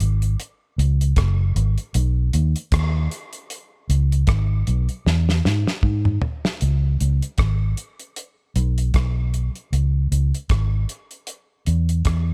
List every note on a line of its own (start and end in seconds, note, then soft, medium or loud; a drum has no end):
0.00 0.35 G#1 medium
0.00 closed hi-hat medium
0.22 closed hi-hat soft
0.40 closed hi-hat medium
0.78 1.12 C#2 loud
0.78 closed hi-hat medium
1.01 closed hi-hat medium
1.16 1.51 F#1 loud
1.16 kick loud
1.16 cross-stick loud
1.16 closed hi-hat medium
1.56 1.75 G#1 medium
1.56 closed hi-hat medium
1.78 closed hi-hat soft
1.94 2.29 B1 loud
1.94 closed hi-hat medium
2.33 2.53 D#2 medium
2.33 closed hi-hat medium
2.56 closed hi-hat medium
2.72 3.07 D#2 medium
2.72 kick loud
2.72 cross-stick loud
2.72 closed hi-hat medium
3.11 closed hi-hat medium
3.33 closed hi-hat medium
3.50 closed hi-hat medium
3.89 4.24 C#2 loud
3.89 closed hi-hat medium
4.12 closed hi-hat medium
4.27 4.62 G#1 loud
4.27 kick loud
4.27 cross-stick loud
4.27 closed hi-hat medium
4.67 4.87 B1 medium
4.67 closed hi-hat medium
4.89 closed hi-hat soft
5.06 5.40 E2 loud
5.06 snare medium
5.29 snare medium
5.45 5.65 G#2 medium
5.45 snare medium
5.67 snare medium
5.83 6.18 G#2 loud
5.83 kick medium
6.05 mid tom medium
6.22 floor tom medium
6.45 snare medium
6.61 6.96 C#2 medium
6.61 closed hi-hat medium
7.00 7.20 C#2 medium
7.00 closed hi-hat medium
7.22 closed hi-hat soft
7.38 7.73 G#1 medium
7.38 kick medium
7.38 cross-stick medium
7.38 closed hi-hat medium
7.77 closed hi-hat medium
8.00 closed hi-hat soft
8.16 closed hi-hat medium
8.56 8.90 B1 loud
8.56 closed hi-hat medium
8.78 closed hi-hat medium
8.94 9.49 B1 medium
8.94 kick medium
8.94 cross-stick loud
8.94 closed hi-hat medium
9.34 closed hi-hat medium
9.55 closed hi-hat soft
9.72 10.07 C#2 medium
9.72 closed hi-hat medium
10.12 10.31 C#2 medium
10.12 closed hi-hat medium
10.35 closed hi-hat medium
10.49 10.84 G#1 medium
10.49 kick loud
10.49 cross-stick medium
10.49 closed hi-hat medium
10.89 closed hi-hat medium
11.11 closed hi-hat soft
11.27 closed hi-hat medium
11.66 12.01 E2 medium
11.66 closed hi-hat medium
11.89 closed hi-hat medium
12.05 12.34 E2 loud
12.05 kick medium
12.05 cross-stick loud
12.05 closed hi-hat medium